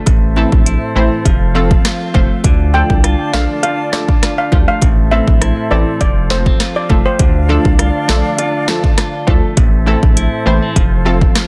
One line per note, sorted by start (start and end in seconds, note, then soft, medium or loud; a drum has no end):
0.00 2.14 A3 medium
0.00 0.13 D4 medium
0.00 0.13 F4 medium
0.06 0.45 A1 loud
0.06 1.32 A2 medium
0.06 2.42 A4 medium
0.06 2.42 C5 medium
0.06 1.24 E5 medium
0.06 kick loud
0.06 closed hi-hat medium
0.06 high bongo medium
0.36 0.49 E3 medium
0.36 0.49 A3 medium
0.36 0.95 C4 medium
0.36 0.49 C4 medium
0.36 0.49 E4 medium
0.36 0.49 A4 loud
0.36 high bongo medium
0.52 0.77 A#1 loud
0.52 kick loud
0.52 high bongo medium
0.66 1.32 E4 medium
0.66 closed hi-hat medium
0.95 1.09 A1 loud
0.95 1.08 E3 medium
0.95 1.08 A3 medium
0.95 1.08 C4 medium
0.95 1.32 C4 medium
0.95 1.09 E4 medium
0.95 1.09 C5 loud
1.25 1.76 F1 loud
1.25 2.44 F3 medium
1.25 2.43 F5 medium
1.25 kick loud
1.25 closed hi-hat medium
1.25 high bongo medium
1.55 1.68 F3 medium
1.55 1.68 A3 medium
1.55 1.68 C4 medium
1.55 2.51 C4 medium
1.55 1.68 F4 medium
1.55 1.68 A4 loud
1.55 high bongo medium
1.71 kick loud
1.71 high bongo medium
1.85 3.03 F4 medium
1.85 cross-stick loud
1.85 snare loud
1.85 closed hi-hat medium
2.14 2.28 F1 medium
2.14 2.27 F3 medium
2.14 2.27 A3 medium
2.14 4.52 A3 medium
2.14 2.27 C4 medium
2.14 2.27 F4 medium
2.14 2.28 C5 loud
2.14 kick loud
2.14 low bongo medium
2.44 2.83 D2 loud
2.44 4.82 D3 medium
2.44 4.79 D4 medium
2.44 4.80 D5 medium
2.44 4.79 F5 medium
2.44 4.79 A5 medium
2.44 kick loud
2.44 closed hi-hat medium
2.44 high bongo medium
2.74 2.86 F3 medium
2.74 2.87 A3 medium
2.74 3.32 D4 medium
2.74 2.87 D4 medium
2.74 2.87 F4 medium
2.74 2.87 A4 medium
2.74 2.87 G5 medium
2.74 high bongo medium
2.90 3.15 C2 medium
2.90 kick medium
2.90 high bongo medium
3.04 3.62 F4 medium
3.04 cross-stick medium
3.04 closed hi-hat medium
3.33 3.47 A#1 loud
3.33 3.46 F3 medium
3.33 3.46 A3 medium
3.33 3.46 D4 medium
3.33 3.46 F4 medium
3.33 3.46 A4 medium
3.33 3.46 F5 medium
3.33 cross-stick medium
3.33 snare loud
3.63 4.21 F4 medium
3.63 3.75 F5 medium
3.63 closed hi-hat medium
3.63 high bongo medium
3.92 4.05 F3 medium
3.92 4.05 A3 medium
3.92 4.05 D4 medium
3.92 4.88 D4 medium
3.92 4.06 F4 medium
3.92 4.06 A4 medium
3.92 4.05 D5 medium
3.92 cross-stick loud
3.92 snare loud
3.92 high bongo medium
4.08 kick loud
4.08 high bongo medium
4.22 4.88 F4 medium
4.22 cross-stick loud
4.22 snare medium
4.22 closed hi-hat medium
4.38 4.49 F5 medium
4.52 4.66 D2 loud
4.52 4.65 F3 medium
4.52 4.65 A3 medium
4.52 6.34 A3 medium
4.52 4.65 D4 medium
4.52 4.65 F4 medium
4.52 4.65 G4 medium
4.52 kick loud
4.52 low bongo medium
4.68 4.79 F5 medium
4.82 5.20 A1 loud
4.82 6.07 A2 medium
4.82 6.97 A4 medium
4.82 6.95 C5 medium
4.82 5.99 E5 medium
4.82 kick loud
4.82 closed hi-hat medium
4.82 high bongo medium
5.11 5.24 E3 medium
5.11 5.24 A3 medium
5.11 5.24 C4 medium
5.11 5.70 C4 medium
5.11 5.24 E4 medium
5.11 5.25 A4 medium
5.11 5.24 E5 medium
5.11 high bongo medium
5.28 5.53 A#1 loud
5.28 kick medium
5.28 high bongo medium
5.41 6.07 E4 medium
5.41 cross-stick medium
5.41 closed hi-hat medium
5.70 5.84 A1 loud
5.70 5.83 E3 medium
5.70 5.84 A3 medium
5.70 5.84 C4 medium
5.70 6.07 C4 medium
5.70 5.84 E4 medium
5.70 5.84 A4 medium
5.70 5.83 D5 medium
6.01 6.51 F1 loud
6.01 7.19 F3 medium
6.01 6.13 D5 medium
6.01 9.34 F5 loud
6.01 kick loud
6.01 closed hi-hat medium
6.01 high bongo medium
6.30 6.43 F3 medium
6.30 6.43 A3 medium
6.30 6.46 A#3 medium
6.30 6.43 C4 medium
6.30 6.43 F4 medium
6.30 6.43 A4 medium
6.30 6.43 C5 medium
6.30 snare medium
6.30 high bongo medium
6.46 7.26 C4 medium
6.46 kick loud
6.46 high bongo medium
6.60 7.79 F4 medium
6.60 cross-stick loud
6.60 snare loud
6.60 closed hi-hat medium
6.76 6.87 D5 medium
6.89 7.03 F1 medium
6.89 7.02 F3 medium
6.89 7.02 A3 medium
6.89 9.27 A3 medium
6.89 7.02 C4 medium
6.89 7.03 F4 medium
6.89 7.03 A4 medium
6.89 kick loud
6.89 low bongo medium
7.06 7.17 C5 medium
7.19 7.58 D2 loud
7.19 9.57 D3 medium
7.19 9.55 D4 medium
7.19 9.55 D5 medium
7.19 9.55 A5 medium
7.19 kick loud
7.19 closed hi-hat medium
7.19 high bongo medium
7.49 7.62 F3 medium
7.49 7.62 A3 medium
7.49 7.62 D4 medium
7.49 8.08 D4 medium
7.49 7.62 F4 medium
7.49 7.62 A4 loud
7.49 high bongo medium
7.65 7.90 C2 medium
7.65 kick medium
7.65 high bongo medium
7.79 8.37 F4 medium
7.79 cross-stick medium
7.79 closed hi-hat medium
8.08 8.22 A#1 loud
8.08 8.21 F3 medium
8.08 8.21 A3 medium
8.08 8.21 D4 medium
8.08 8.67 D4 medium
8.08 8.21 F4 medium
8.08 8.22 A4 medium
8.08 cross-stick medium
8.08 snare loud
8.38 8.97 F4 medium
8.38 closed hi-hat medium
8.38 high bongo medium
8.68 8.80 F3 loud
8.68 8.81 A3 medium
8.68 8.81 D4 medium
8.68 8.81 F4 medium
8.68 8.81 A4 loud
8.68 cross-stick loud
8.68 snare loud
8.68 high bongo medium
8.84 kick loud
8.84 high bongo medium
8.98 9.63 F4 medium
8.98 cross-stick loud
8.98 snare medium
8.98 closed hi-hat medium
9.27 9.41 D2 loud
9.27 9.40 F3 medium
9.27 9.40 A3 medium
9.27 10.50 A3 medium
9.27 9.40 D4 medium
9.27 9.40 F4 medium
9.27 9.40 A4 loud
9.27 kick loud
9.27 low bongo medium
9.57 9.96 A1 loud
9.57 10.82 A2 medium
9.57 11.47 A4 medium
9.57 11.47 C5 medium
9.57 10.75 E5 medium
9.57 kick loud
9.57 closed hi-hat medium
9.57 high bongo medium
9.86 9.99 E3 loud
9.86 9.99 A3 medium
9.86 10.00 C4 medium
9.86 10.46 C4 medium
9.86 10.00 E4 medium
9.86 10.00 A4 loud
9.86 high bongo medium
10.03 10.28 A#1 loud
10.03 kick medium
10.03 high bongo medium
10.17 10.82 E4 medium
10.17 closed hi-hat medium
10.46 10.60 A1 loud
10.46 10.59 E3 medium
10.46 10.59 A3 medium
10.46 10.62 A#3 medium
10.46 10.59 C4 medium
10.46 10.59 E4 medium
10.46 10.59 C5 loud
10.62 10.82 C4 medium
10.76 11.26 F1 loud
10.76 11.47 F3 medium
10.76 11.47 F5 medium
10.76 kick medium
10.76 closed hi-hat medium
10.76 high bongo medium
11.05 11.18 F3 medium
11.05 11.18 A3 medium
11.05 11.18 C4 medium
11.05 11.47 C4 medium
11.05 11.18 F4 medium
11.05 11.19 A4 loud
11.05 high bongo medium
11.21 kick loud
11.21 high bongo medium
11.35 11.47 F4 medium
11.35 cross-stick loud
11.35 snare loud
11.35 closed hi-hat medium